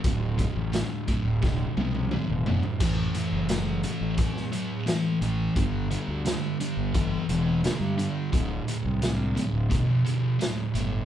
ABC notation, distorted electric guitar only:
X:1
M:4/4
L:1/8
Q:1/4=87
K:Dmix
V:1 name="Distorted electric guitar" clef=bass
[D,,A,,] [D,,A,,] [D,,A,,] [D,,A,,] [D,,B,,] [D,,B,,] [D,,A,,] [D,,A,,] | [A,,E,] [A,,E,] [A,,E,] [A,,E,] [A,,F,] [A,,F,] [A,,E,] [A,,E,] | [G,,D,] [G,,D,] [G,,D,] [G,,D,] [G,,E,] [G,,E,] [G,,D,] [G,,D,] | [D,,A,,] [D,,A,,] [D,,A,,] [D,,A,,] [D,,B,,] [D,,B,,] [D,,A,,] [D,,A,,] |]